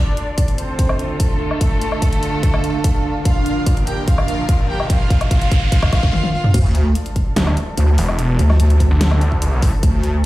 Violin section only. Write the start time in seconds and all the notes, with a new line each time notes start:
Already playing: D4 D5
0.58 C4 C5
1.20 A3 A4
3.25 F4 F5
3.87 G4 G5
4.08 F4 F5
4.69 G4 G5
4.90 F4 F5
5.31 F4 F5
5.72 F4 F5
5.92 F4 F5
6.13 F4 F5
6.34 F4 F5